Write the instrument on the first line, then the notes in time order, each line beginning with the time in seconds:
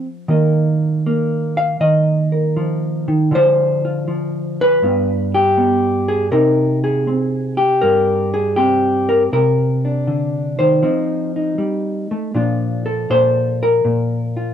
hollow-body jazz guitar
Already playing: F3 D4 G4 C5
0.28 D#3 A#3 A#4 D#5
1.06 A#3
1.57 F5
1.80 D#3 D#5
2.32 A#4
2.57 F3
3.08 D#3
3.31 D3 F3 F4 C5
3.85 F4
4.08 F3
4.61 B4
4.82 G2 B3 F4
5.34 G4
5.58 B3
6.08 G#4
6.32 C3 C4 D#4 A#4
6.84 G#4
7.07 C4
7.57 G4
7.81 G2 A#4
8.34 G#4
8.56 C4 G4
9.09 A#4
9.33 C3 A#4
9.85 D4
10.07 D3
10.59 D#3 C5
10.82 F3 C4 D#4
11.36 D#4
11.58 G3
12.11 A3
12.34 A#2 F3 D4 F4
12.86 A4
13.10 A#2 C5
13.63 A#4
13.85 A#2
14.37 F4